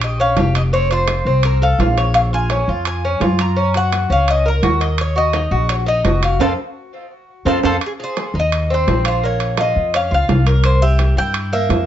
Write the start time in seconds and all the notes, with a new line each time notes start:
Already playing: A#1 G4
0.01 D#5, high timbale
0.20 C#4 F5
0.36 F1 G4, high timbale, low timbale
0.55 D#5, high timbale
0.73 C4 C#5
0.91 F4 C5, high timbale
1.08 high timbale, low timbale
1.25 C2 C4
1.43 A#4, high timbale
1.62 A4 F5
1.78 A#1 F4, high timbale, low timbale
1.98 C#5, high timbale
2.14 F5, high timbale
2.33 F4 G#5
2.50 C#4, high timbale, low timbale
2.68 F2 F4
2.85 G#5, high timbale
3.05 C#4
3.20 F#2 F4, high timbale, low timbale
3.39 A#5, high timbale
3.56 C#4
3.74 F#4 F#5, high timbale
3.92 high timbale, low timbale
4.10 C#2 C#4 F5
4.28 D#5, high timbale
4.46 A#4
4.62 D#2 F#4, high timbale, low timbale
4.81 D#5, high timbale
4.98 C#5, high timbale
5.16 F#4 D#5
5.33 D#4, high timbale, low timbale
5.51 A#1 F#4
5.69 C#5, high timbale
5.86 D#4 D#5
6.04 F1 F#4, high timbale, low timbale
6.23 F5, high timbale
6.39 F2 C4 F4 A4 C5 F5, high timbale
7.45 F2 C4 F4 A4 C5 F5, high timbale
7.63 F2 C4 F4 A4 C5 F5, high timbale
7.81 high timbale
7.86 G#4
8.00 G#4 C5
8.17 high timbale, low timbale
8.34 D#2 D#4
8.40 D#5
8.52 high timbale
8.70 C4 C5
8.87 A#1, high timbale, low timbale
9.05 F4 C5, high timbale
9.23 A#3 C#5
9.40 high timbale
9.57 F4 D#5, high timbale, low timbale
9.76 F2
9.94 C#4 F5, high timbale
10.11 C#2 F4 F5
10.29 C2, high timbale, low timbale
10.47 A#4, high timbale
10.64 C5, high timbale
10.82 G4 E5
10.99 high timbale, low timbale
11.16 G2 E4 G5
11.34 high timbale
11.53 A#3 E5
11.69 F2, high timbale, low timbale